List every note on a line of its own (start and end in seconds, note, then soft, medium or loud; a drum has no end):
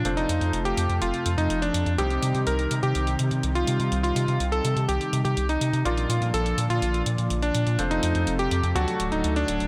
0.00 1.95 F3 medium
0.00 1.95 F4 medium
0.05 0.25 F1 medium
0.05 5.81 C3 medium
0.05 1.95 A3 medium
0.05 1.96 A3 medium
0.05 1.95 C4 medium
0.05 1.95 F4 medium
0.05 1.96 A4 medium
0.05 1.95 C5 medium
0.05 closed hi-hat medium
0.17 0.57 D#4 medium
0.17 closed hi-hat soft
0.29 0.39 F2 medium
0.29 closed hi-hat medium
0.41 0.51 F2 medium
0.41 closed hi-hat soft
0.53 0.74 F1 medium
0.53 closed hi-hat medium
0.65 0.95 G4 medium
0.65 closed hi-hat soft
0.77 0.88 F2 medium
0.77 closed hi-hat medium
0.90 1.00 F2 medium
0.90 closed hi-hat soft
1.02 1.12 F1 loud
1.02 1.32 F4 medium
1.02 closed hi-hat medium
1.14 closed hi-hat soft
1.26 1.36 F2 medium
1.26 closed hi-hat medium
1.38 1.48 F2 medium
1.38 1.58 D#4 medium
1.38 closed hi-hat soft
1.50 1.71 F1 medium
1.50 closed hi-hat medium
1.62 1.92 D4 medium
1.62 closed hi-hat soft
1.74 1.84 F2 medium
1.74 closed hi-hat medium
1.86 1.97 F2 medium
1.86 closed hi-hat soft
1.98 2.19 C2 medium
1.98 5.83 C3 medium
1.98 5.82 D#3 medium
1.98 5.82 G3 medium
1.98 5.83 G3 medium
1.98 5.83 C4 medium
1.98 5.82 D#4 medium
1.98 5.83 D#4 medium
1.98 2.39 G4 medium
1.98 5.82 G4 medium
1.98 5.83 C5 medium
1.98 closed hi-hat medium
2.10 closed hi-hat soft
2.23 2.33 C3 medium
2.23 closed hi-hat medium
2.35 2.45 C3 medium
2.35 closed hi-hat soft
2.47 2.67 C2 medium
2.47 2.77 A#4 medium
2.47 closed hi-hat medium
2.59 closed hi-hat soft
2.71 2.81 C3 medium
2.71 closed hi-hat medium
2.83 2.93 C3 medium
2.83 3.13 G4 medium
2.83 closed hi-hat soft
2.95 3.16 C2 medium
2.95 closed hi-hat medium
3.07 closed hi-hat soft
3.19 3.30 C3 medium
3.19 closed hi-hat medium
3.31 3.42 C3 medium
3.31 closed hi-hat soft
3.43 3.64 C2 medium
3.43 closed hi-hat medium
3.55 3.96 F4 medium
3.55 closed hi-hat soft
3.67 3.78 C3 medium
3.67 closed hi-hat medium
3.80 3.90 C3 medium
3.80 closed hi-hat soft
3.92 4.12 C2 medium
3.92 closed hi-hat medium
4.03 4.44 F4 medium
4.03 closed hi-hat soft
4.16 4.26 C3 medium
4.16 closed hi-hat medium
4.28 4.38 C3 medium
4.28 closed hi-hat soft
4.40 4.61 C2 medium
4.40 closed hi-hat medium
4.52 4.82 A4 medium
4.52 closed hi-hat soft
4.64 4.75 C3 loud
4.64 closed hi-hat medium
4.77 4.87 C3 medium
4.77 closed hi-hat soft
4.88 4.99 C2 medium
4.88 5.19 G4 medium
4.88 closed hi-hat medium
5.01 closed hi-hat soft
5.13 5.23 C3 medium
5.13 closed hi-hat medium
5.25 5.35 C3 medium
5.25 5.45 G4 medium
5.25 closed hi-hat soft
5.37 5.58 C2 medium
5.37 closed hi-hat medium
5.49 5.79 D#4 medium
5.49 closed hi-hat soft
5.61 5.72 C3 medium
5.61 closed hi-hat medium
5.73 5.84 C3 loud
5.73 closed hi-hat soft
5.85 6.06 A#1 loud
5.85 7.77 A#2 medium
5.85 7.76 A#2 medium
5.85 7.77 D3 medium
5.85 8.73 F3 medium
5.85 7.76 A#3 medium
5.85 7.77 D4 medium
5.85 7.76 D4 medium
5.85 7.76 F4 medium
5.85 7.77 F4 medium
5.85 6.26 F4 medium
5.85 7.76 D5 medium
5.85 closed hi-hat medium
5.97 closed hi-hat soft
6.09 6.20 A#2 medium
6.09 closed hi-hat medium
6.22 6.32 A#2 medium
6.22 closed hi-hat soft
6.34 6.54 A#1 medium
6.34 6.64 A4 medium
6.34 closed hi-hat medium
6.46 closed hi-hat soft
6.58 6.68 A#2 medium
6.58 closed hi-hat medium
6.70 6.80 A#2 medium
6.70 7.00 F4 medium
6.70 closed hi-hat soft
6.82 7.03 A#1 medium
6.82 closed hi-hat medium
6.94 closed hi-hat soft
7.06 7.17 A#2 medium
7.06 closed hi-hat medium
7.18 7.29 A#2 medium
7.18 closed hi-hat soft
7.30 7.51 A#1 medium
7.30 closed hi-hat medium
7.42 7.83 D4 medium
7.42 closed hi-hat soft
7.55 7.65 A#2 medium
7.55 closed hi-hat medium
7.67 7.77 A#2 medium
7.67 closed hi-hat soft
7.79 8.00 F1 loud
7.79 8.75 C3 medium
7.79 8.73 A3 medium
7.79 8.74 A3 medium
7.79 8.73 C4 medium
7.79 8.73 F4 medium
7.79 8.75 F4 medium
7.79 9.68 A4 medium
7.79 8.73 C5 medium
7.79 closed hi-hat medium
7.91 8.31 D#4 medium
7.91 closed hi-hat soft
8.03 8.13 F2 medium
8.03 closed hi-hat medium
8.15 8.26 F2 medium
8.15 closed hi-hat soft
8.27 8.48 F1 medium
8.27 closed hi-hat medium
8.39 8.70 G4 medium
8.39 closed hi-hat soft
8.51 8.62 F2 medium
8.51 closed hi-hat medium
8.63 8.74 F2 medium
8.63 closed hi-hat soft
8.75 8.86 D2 loud
8.75 9.68 D3 medium
8.75 9.68 F#3 medium
8.75 9.68 A3 medium
8.75 9.68 D4 medium
8.75 9.06 F#4 medium
8.75 9.68 F#4 medium
8.75 9.68 A4 medium
8.75 closed hi-hat medium
8.88 closed hi-hat soft
9.00 9.10 D1 medium
9.00 closed hi-hat medium
9.12 9.22 D1 medium
9.12 9.32 D#4 medium
9.12 closed hi-hat soft
9.24 9.45 D2 medium
9.24 closed hi-hat medium
9.36 9.66 D4 medium
9.36 closed hi-hat soft
9.48 9.59 D1 medium
9.48 closed hi-hat medium
9.60 9.68 D1 loud
9.60 closed hi-hat soft